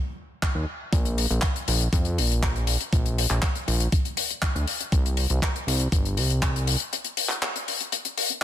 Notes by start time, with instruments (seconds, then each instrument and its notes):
0.42 kick, clap
0.55 analog synth bass D#2
0.92 analog synth bass A#1, kick, closed hi-hat
1.05 closed hi-hat
1.18 open hi-hat
1.30 analog synth bass A#1, closed hi-hat
1.41 kick, clap, closed hi-hat
1.56 closed hi-hat
1.68 analog synth bass A#1, open hi-hat
1.81 closed hi-hat
1.93 analog synth bass F2, kick, closed hi-hat
2.05 closed hi-hat
2.18 analog synth bass A#1, open hi-hat
2.31 closed hi-hat
2.43 kick, clap, closed hi-hat
2.56 closed hi-hat
2.67 open hi-hat
2.80 closed hi-hat
2.93 analog synth bass A#1, kick, closed hi-hat
3.06 closed hi-hat
3.18 open hi-hat
3.30 analog synth bass A#1, clap, closed hi-hat
3.42 kick, clap, closed hi-hat
3.55 closed hi-hat
3.68 analog synth bass A#1, open hi-hat
3.80 closed hi-hat
3.92 kick, closed hi-hat
4.05 closed hi-hat
4.17 open hi-hat
4.30 closed hi-hat
4.42 kick, clap, closed hi-hat
4.55 analog synth bass D2, closed hi-hat
4.67 open hi-hat
4.80 closed hi-hat
4.92 analog synth bass C2, kick, closed hi-hat
5.06 closed hi-hat
5.17 open hi-hat
5.30 analog synth bass C2, closed hi-hat
5.42 kick, clap, closed hi-hat
5.56 closed hi-hat
5.67 analog synth bass C2, open hi-hat
5.80 closed hi-hat
5.92 analog synth bass G1, kick, closed hi-hat
6.05 closed hi-hat
6.17 analog synth bass C2, open hi-hat
6.30 closed hi-hat
6.42 kick, clap, closed hi-hat
6.56 closed hi-hat
6.67 open hi-hat
6.80 closed hi-hat
6.93 closed hi-hat
7.04 closed hi-hat
7.17 open hi-hat
7.29 clap, closed hi-hat
7.42 clap, closed hi-hat
7.56 closed hi-hat
7.68 open hi-hat
7.80 closed hi-hat
7.92 closed hi-hat
8.05 closed hi-hat
8.18 open hi-hat
8.30 closed hi-hat